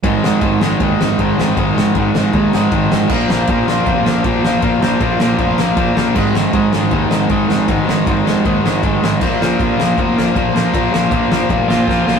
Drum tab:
CC |--------|--------|x-------|--------|
RD |x-x-x-x-|x-x-x-x-|--x-x-x-|x-x-x-x-|
SD |-o-o-o-o|-o-o-o-o|-o-o-o-o|-o-o-o-o|
BD |o-o-o-o-|o-o-o-o-|o-o-o-o-|o-o-o-o-|

CC |x-------|--------|x-------|--------|
RD |--x-x-x-|x-x-x-x-|--x-x-x-|x-x-x---|
SD |-o-o-o-o|-o-o-o-o|-o-o-o-o|-o-o-ooo|
BD |o-o-o-o-|o-o-o-o-|o-o-o-o-|o-o-o-o-|